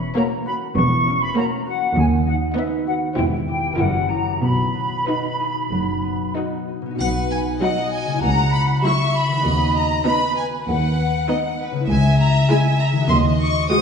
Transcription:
Already playing: harp E3 C#4
0.15 viola section A#3, violin section F#4 C#5, harp A#4, flute section A#5
0.46 harp F#4, flute section B5
0.75 double bass section E1, cello section E2, harp E3, flute section C#6
1.05 harp C#4
1.21 flute section B5
1.35 viola section A#3, violin section F#4 C#5, harp A#4, flute section A#5
1.66 harp F#4, flute section F#5
1.95 double bass section D#2, cello section D#2, harp D#3, flute section G#5
2.26 harp D#4, flute section F#5
2.55 viola section B3, violin section D#4 D#5, harp B4, flute section E5
2.87 harp F#4, flute section F#5
3.16 double bass section E1, cello section E2, harp E3, viola section E4, violin section G4 C5, flute section G5
3.47 harp E4 G4, flute section G5
3.77 double bass section F#1, cello section F#2, harp F#2, viola section E4, violin section G4 A#4, flute section F#5
4.09 harp E4 G4, flute section A#5
4.41 double bass section B1, cello section B2, harp B2, flute section B5
4.75 harp B3
5.05 viola section D#4, harp F#4, violin section F#4 B4
5.40 harp D#4
5.72 double bass section F#1, cello section F#2, harp F#3
6.04 harp B3
6.36 viola section D#4, harp F#4, violin section F#4 B4
6.68 harp D#4
6.82 harp B2
6.86 harp B3
6.91 harp D#4
6.95 harp F#4
6.99 double bass section B1, cello section B2, violin section B4 F#5, flute section F#5, triangle
7.30 flute section G#5, violin section G#5
7.60 viola section F#3 D#4, violin section D#5 F#5, flute section F#5
7.90 flute section G#5, violin section G#5
8.05 harp C#3
8.09 harp A#3
8.14 harp E4
8.18 harp F#4, flute section A#5
8.22 double bass section C#2, cello section C#2, violin section F#5 A#5
8.51 flute section B5, violin section B5
8.82 viola section F#3 E4, violin section E5 C#6, flute section C#6
9.14 flute section B5, violin section B5
9.28 harp D#3
9.32 harp B3
9.37 harp D#4
9.41 double bass section D#2, harp F#4, violin section D#5
9.46 cello section D#2
9.75 flute section A#5, violin section A#5
10.06 viola section B3 D#4, violin section B4 B5, flute section B5
10.36 flute section G#5, violin section G#5
10.66 double bass section D#2, cello section D#2, violin section B4 F#5, flute section F#5
11.28 viola section B3 D#4, violin section D#5
11.59 violin section B4
11.72 harp C#3
11.76 harp G#3
11.81 harp E4
11.88 double bass section C#2, cello section C#2, violin section E5 G#5, flute section G#5
12.19 flute section A#5, violin section A#5
12.49 viola section G#3 E4, flute section G#5, violin section G#5
12.80 violin section A#5, flute section A#5
12.92 harp D#3
12.97 harp G#3
13.02 harp F#4 G#4
13.09 cello section D#2, double bass section D#2, violin section D#5 C6, flute section C6
13.40 violin section C#6, flute section C#6
13.69 viola section G#3 F#4, violin section C5 D#6, flute section D#6

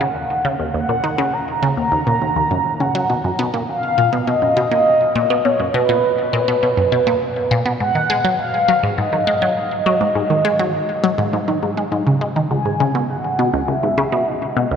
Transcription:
Already playing: soft synth lead F#5
0.01 synth arpeggio sound C#3
0.45 synth arpeggio sound C#3, soft synth lead F5
0.59 synth arpeggio sound D#2
0.74 synth arpeggio sound D#2, soft synth lead F#5
0.89 synth arpeggio sound A#2
1.04 synth arpeggio sound D#3
1.18 synth arpeggio sound C#3
1.33 soft synth lead A#5
1.63 synth arpeggio sound C#3
1.77 synth arpeggio sound D#2
1.92 synth arpeggio sound D#2
2.07 synth arpeggio sound A#2
2.22 synth arpeggio sound D#2
2.36 synth arpeggio sound D#2
2.51 synth arpeggio sound F#2
2.80 synth arpeggio sound C#3, soft synth lead F#5
2.95 synth arpeggio sound F#3
3.10 synth arpeggio sound B2
3.24 synth arpeggio sound F#2
3.39 synth arpeggio sound B2
3.54 synth arpeggio sound A#2
3.68 soft synth lead F5
3.98 synth arpeggio sound A#2
4.13 synth arpeggio sound B2
4.27 synth arpeggio sound B2, soft synth lead D#5
4.42 synth arpeggio sound F#2
4.57 synth arpeggio sound B2
4.71 synth arpeggio sound A#2
5.15 synth arpeggio sound A#2
5.30 synth arpeggio sound B2
5.45 synth arpeggio sound B2, soft synth lead C#5
5.59 synth arpeggio sound F#2
5.74 synth arpeggio sound B2, soft synth lead B4
5.89 synth arpeggio sound A#2
6.33 synth arpeggio sound A#2
6.48 synth arpeggio sound B2
6.63 synth arpeggio sound B2
6.77 synth arpeggio sound F#2
6.92 synth arpeggio sound B2
7.07 synth arpeggio sound A#2
7.51 synth arpeggio sound A#2
7.66 synth arpeggio sound B2
7.80 synth arpeggio sound G#2, soft synth lead F#5
7.95 synth arpeggio sound D#3
8.10 synth arpeggio sound G#3
8.24 synth arpeggio sound F#3
8.39 soft synth lead F5
8.68 synth arpeggio sound F#3
8.83 synth arpeggio sound G#2
8.98 synth arpeggio sound G#2, soft synth lead D#5
9.13 synth arpeggio sound D#3
9.27 synth arpeggio sound G#3
9.42 synth arpeggio sound F#3
9.86 synth arpeggio sound F#3
10.01 synth arpeggio sound G#2
10.15 synth arpeggio sound G#2
10.30 synth arpeggio sound D#3
10.45 synth arpeggio sound G#3
10.59 synth arpeggio sound F#3
11.04 synth arpeggio sound F#3
11.18 synth arpeggio sound G#2
11.33 synth arpeggio sound G#2
11.48 synth arpeggio sound D#3
11.63 synth arpeggio sound G#2
11.77 synth arpeggio sound G#3
11.92 synth arpeggio sound G#2
12.07 synth arpeggio sound C#3
12.21 synth arpeggio sound G#3
12.36 synth arpeggio sound D#3
12.51 synth arpeggio sound C#2, soft synth lead G#5
12.65 synth arpeggio sound G#2
12.80 synth arpeggio sound C#3
12.95 synth arpeggio sound B2
13.10 soft synth lead F#5
13.39 synth arpeggio sound B2
13.54 synth arpeggio sound C#2
13.68 synth arpeggio sound C#2, soft synth lead E5
13.83 synth arpeggio sound G#2
13.98 synth arpeggio sound C#3
14.12 synth arpeggio sound B2
14.27 soft synth lead D#5
14.57 synth arpeggio sound B2
14.71 synth arpeggio sound C#2

